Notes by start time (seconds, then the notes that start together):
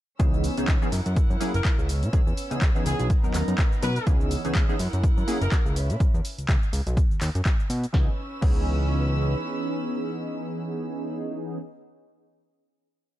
0.19 C#2 E3 B3 C#4 D#4 G#4 B4 E6, kick, closed hi-hat, cabasa
0.34 cabasa
0.44 open hi-hat, cabasa
0.57 C#2 E3 B3 C#4 D#4 G#4, closed hi-hat, cabasa
0.68 C#2, kick, clap, closed hi-hat, cabasa
0.81 E3 B3 C#4 D#4 G#4, cabasa
0.92 F#2 E4 A#4 F#5, open hi-hat, cabasa
1.06 F#2, closed hi-hat, cabasa
1.16 F#2, kick, closed hi-hat, cabasa
1.30 F#2, cabasa
1.40 F#3 A#3 C#4 E4 G#4, open hi-hat, cabasa
1.54 F#1 A#4, closed hi-hat, cabasa
1.65 kick, clap, closed hi-hat, cabasa
1.78 C#2, cabasa
1.89 B3 C#4 E6, open hi-hat, cabasa
2.03 B2, closed hi-hat, cabasa
2.13 E2 E3 B3 C#4 D#4 G#4, kick, closed hi-hat, cabasa
2.27 E2, cabasa
2.37 open hi-hat, cabasa
2.51 C#2 E3 B3 C#4 D#4 G#4, closed hi-hat, cabasa
2.62 C#2, kick, clap, closed hi-hat, cabasa
2.75 E3 B3 C#4 D#4 G#4, cabasa
2.86 C#2 G#4, open hi-hat, cabasa
3.00 B1, closed hi-hat, cabasa
3.10 D#4 A#5, kick, closed hi-hat, cabasa
3.23 D#2 F#3 B3 C#4 D#4 A#4, cabasa
3.34 D#2, clap, open hi-hat, cabasa
3.48 F#2, closed hi-hat, cabasa
3.58 F#3 B3 C#4 D#4 A#4, kick, clap, closed hi-hat, cabasa
3.72 cabasa
3.82 B2 F#3 B3 C#4 D#4 A#4 B4, open hi-hat, cabasa
3.96 closed hi-hat, cabasa
4.06 C#2 E3 B3 C#4 D#4 G#4 E6, kick, closed hi-hat, cabasa
4.21 cabasa
4.31 open hi-hat, cabasa
4.44 C#2 E3 B3 C#4 D#4 G#4, closed hi-hat, cabasa
4.55 C#2, kick, clap, closed hi-hat, cabasa
4.69 E3 B3 C#4 D#4 G#4, cabasa
4.79 F#2 E4 A#4 F#5, open hi-hat, cabasa
4.93 F#2, closed hi-hat, cabasa
5.04 F#2, kick, closed hi-hat, cabasa
5.17 F#2, cabasa
5.27 F#3 A#3 C#4 E4 G#4, open hi-hat, cabasa
5.41 F#1 A#4, closed hi-hat, cabasa
5.52 kick, clap, closed hi-hat, cabasa
5.66 C#2, cabasa
5.76 C#4 B4 E5, open hi-hat, cabasa
5.90 B2, closed hi-hat, cabasa
6.00 E2, kick, closed hi-hat, cabasa
6.14 E2, cabasa
6.25 open hi-hat, cabasa
6.38 C#2, closed hi-hat, cabasa
6.49 C#2, kick, clap, closed hi-hat, cabasa
6.63 cabasa
6.73 C#2, open hi-hat, cabasa
6.87 B1, closed hi-hat, cabasa
6.97 kick, closed hi-hat, cabasa
7.11 D#2, cabasa
7.21 D#2, clap, open hi-hat, cabasa
7.35 F#2, closed hi-hat, cabasa
7.45 kick, clap, closed hi-hat, cabasa
7.60 cabasa
7.70 B2, open hi-hat, cabasa
7.84 closed hi-hat, cabasa
7.93 C#2 E3 B3 C#4 D#4 G#4 B4 E6, kick, snare
8.41 C#2 E3 B3 C#4 D#4 G#4, kick, crash